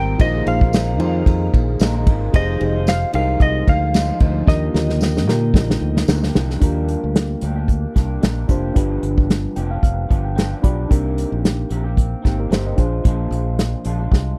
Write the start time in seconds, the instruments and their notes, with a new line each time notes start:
Already playing: fingered electric bass G#1, ambient pad D#3 C4 G4, clean electric guitar G3 C4 G4 A#4, reed electric piano F4 G4 A#4 C5, electric slide guitar G5
0.18 fingered electric bass A#1, clean electric guitar A#2 D#3 G#3 D#4 F4 A#4, ambient pad A#3 G#4, reed electric piano D#4 F4 G#4 C5, electric slide guitar D#5, kick, ride
0.45 fingered electric bass A#1, reed electric piano D#4 F4 G#4 C5, electric slide guitar F5, ride
0.61 clean electric guitar G#3 D#4 F4 A#4, kick
0.73 snare, ride, tambourine
0.98 fingered electric bass F2, clean electric guitar G#3 D#4 F4, reed electric piano D#4 F4 G#4 C5, ride
1.02 clean electric guitar A#4
1.26 fingered electric bass F2, kick, ride
1.54 fingered electric bass A#1, kick, ride
1.80 fingered electric bass A#1, clean electric guitar G#3 D#4 F4 A#4, snare, ride, tambourine
1.94 clean electric guitar G#3 D#4 F4 A#4
2.06 fingered electric bass G#1, clean electric guitar G#3 D#4 F4 A#4, kick, ride
2.33 fingered electric bass F1, clean electric guitar F3 G#3 D#4 F4 C5, ambient pad F3 G#3 F4, reed electric piano D#4 G4 G#4 C5, electric slide guitar D#5, kick, ride
2.59 fingered electric bass F1, reed electric piano D#4 G4 G#4 C5, ride
2.75 clean electric guitar D#4 F4 C5
2.87 electric slide guitar F5, snare, ride, tambourine
3.13 fingered electric bass C2, clean electric guitar G#3 D#4 F4 C5, reed electric piano D#4 G4 G#4 A#4, electric slide guitar F5, ride
3.40 fingered electric bass C2, electric slide guitar D#5, kick, ride
3.67 fingered electric bass D2, electric slide guitar F5, kick, ride
3.94 clean electric guitar G#3 D#4 F4 C5, snare, ride, tambourine
4.09 clean electric guitar D#4 F4 C5
4.20 fingered electric bass D2, clean electric guitar G#3 D#4 F4 C5, kick, ride
4.46 fingered electric bass D#2, clean electric guitar D#3 A#3 G4, ambient pad A#3 G4, reed electric piano D4 F4 G4 A#4, electric slide guitar D#5, kick, snare
4.73 fingered electric bass D#2, reed electric piano D3 F4 G4 A#4, snare
4.88 clean electric guitar A#3 G4, snare
5.01 snare, tambourine
5.17 snare
5.27 fingered electric bass A#2, reed electric piano D3 F4 G4 A#4, clean electric guitar D#3 A#3 G4, snare
5.54 fingered electric bass A#1, kick, snare
5.70 snare
5.81 fingered electric bass D2
5.97 snare
6.08 fingered electric bass D2, clean electric guitar D#3 A#3 D4 G4, snare, tambourine
6.22 clean electric guitar A#3 D4 G4, snare
6.35 fingered electric bass C2, clean electric guitar D#3 A#3 D4 G4, snare
6.50 snare
6.61 fingered electric bass D#2, clean electric guitar G3 A#3 D4 G4, reed electric piano D4 F4 G4 A#4, kick, closed hi-hat
6.88 closed hi-hat
7.04 fingered electric bass D2
7.16 snare, closed hi-hat
7.41 fingered electric bass D2, clean electric guitar G3 A#3 D4 G4, closed hi-hat
7.56 clean electric guitar A#3 D4 G4
7.68 kick, closed hi-hat
7.95 fingered electric bass C2, clean electric guitar G3 A#3 D4 G4, kick, snare, closed hi-hat
8.21 fingered electric bass A#1, clean electric guitar G3 A#3 D4 G4, snare, closed hi-hat
8.48 fingered electric bass F1, clean electric guitar G3 A#3 D4 G4, reed electric piano D4 F4 G4 C5, kick, closed hi-hat
8.74 fingered electric bass G1, clean electric guitar G2 D3 F3 B3 D4 G4, reed electric piano D4 F4 G4 B4, kick, closed hi-hat
9.03 fingered electric bass G1, closed hi-hat
9.18 kick
9.30 snare, closed hi-hat
9.56 fingered electric bass F1, clean electric guitar F3 B3 D4 G4, reed electric piano G5, closed hi-hat
9.70 clean electric guitar F3 B3 D4 G4, reed electric piano F5
9.83 fingered electric bass F1, reed electric piano F5, kick, closed hi-hat
10.09 fingered electric bass G1, clean electric guitar F3 B3 D4 G4, kick, closed hi-hat
10.25 reed electric piano G5
10.35 clean electric guitar F3 B3 D4 G4, reed electric piano G5, snare, closed hi-hat
10.62 fingered electric bass B1, clean electric guitar F3 B3 D4 G4, reed electric piano D4 F4 G4 D5 B5, kick, closed hi-hat
10.89 fingered electric bass C2, clean electric guitar C3 D#3 A#3 C4 G4, reed electric piano D4 D#4 G4 A#4, kick, closed hi-hat
11.18 closed hi-hat
11.32 fingered electric bass A#1
11.45 snare, closed hi-hat
11.70 fingered electric bass A#1, clean electric guitar D#3 A#3 C4 G4, closed hi-hat
11.84 clean electric guitar A#3 C4 G4
11.97 kick, closed hi-hat
12.22 fingered electric bass G#1, clean electric guitar D#3 A#3 C4 G4, reed electric piano D#4 G4, kick, snare, closed hi-hat
12.40 reed electric piano G4 A#4
12.50 fingered electric bass G1, clean electric guitar D#3 A#3 C4 G4, reed electric piano C5, snare, closed hi-hat
12.66 reed electric piano C5 D#5
12.76 fingered electric bass A#1, clean electric guitar F3 G#3 D4 F4, reed electric piano D4 F4 G#4 C5, kick, closed hi-hat
13.04 fingered electric bass A#1, clean electric guitar A#2 F3 G#3 D4 F4, kick, closed hi-hat
13.31 fingered electric bass A#1, closed hi-hat
13.59 snare, closed hi-hat
13.84 fingered electric bass A#1, clean electric guitar F3 G#3 D4 F4, closed hi-hat
13.99 clean electric guitar G#3 D4 F4
14.12 fingered electric bass C2, kick, snare